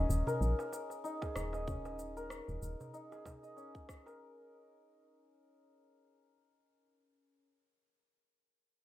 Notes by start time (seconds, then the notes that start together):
Already playing: C#4 D#4 G#4 A#4 D#5
0.09 D#1, cabasa
0.27 A#4, darbuka dum, cabasa
0.41 A#1, cabasa
0.59 darbuka tek, cabasa
0.73 darbuka ka, cabasa
0.90 darbuka tek, cabasa
1.04 D#4, cabasa
1.22 G#4, kick, darbuka tek, cabasa
1.36 D#1 D#4, cross-stick, cabasa
1.53 D#5, darbuka tek, cabasa
1.67 C#4, kick, darbuka dum, cabasa
1.85 darbuka tek, cabasa
1.99 darbuka ka, cabasa
2.17 A#4, cabasa
2.30 cross-stick, cabasa
2.48 D#1, cabasa
2.62 D#1, cabasa
2.80 darbuka dum, cabasa
2.94 D#4, cabasa
3.12 G#4, darbuka ka, darbuka tek, cabasa
3.25 D#4, kick, darbuka tek, darbuka dum, cabasa
3.43 D#5, cabasa
3.57 C#4, cabasa
3.75 kick, darbuka ka, cabasa
3.89 kick, cross-stick, cabasa
4.06 A#4, darbuka ka, darbuka tek, cabasa